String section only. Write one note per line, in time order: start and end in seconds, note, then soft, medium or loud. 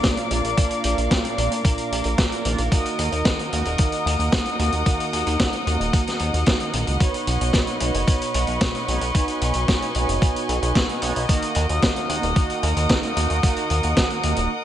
0.00 6.97 A#4 medium
0.00 2.68 D5 medium
0.00 2.68 F5 medium
0.00 2.68 D6 medium
2.72 14.64 D#5 medium
2.72 9.11 F#5 medium
2.72 6.97 D#6 medium
7.00 11.25 B4 medium
7.00 11.25 C#6 medium
9.15 11.27 G#5 medium
11.29 14.64 A#4 medium
11.29 14.64 F#5 medium
11.29 14.64 D#6 medium